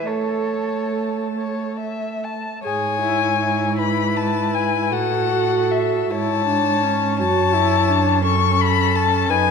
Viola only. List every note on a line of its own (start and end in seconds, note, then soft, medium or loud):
0.07 2.39 A3 medium
2.64 3.00 G#4 medium
3.02 3.40 E4 medium
3.41 4.92 E4 medium
4.91 6.12 F#4 medium
6.10 6.46 E4 medium
6.47 6.85 D4 medium
6.84 7.20 C#4 medium
7.19 7.56 F#4 medium
7.54 7.91 E4 medium
7.90 8.24 D4 medium
8.24 9.31 C#4 medium
9.30 9.51 D#4 medium